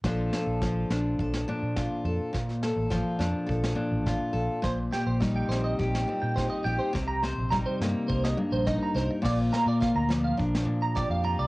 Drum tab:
CC |----------------|----------------|----------------|----------------|
SD |o-o-o-o--o--o---|ooo-o-o--o--o---|o-o-o-o-oo--o---|o-o-o-o--o--o-o-|
BD |o---o---o---o---|o---o---o---o---|o---o---o---o---|o---o---o---o---|

CC |x---------------|
SD |o-o-o-o-oo--o---|
BD |o---o---o---o---|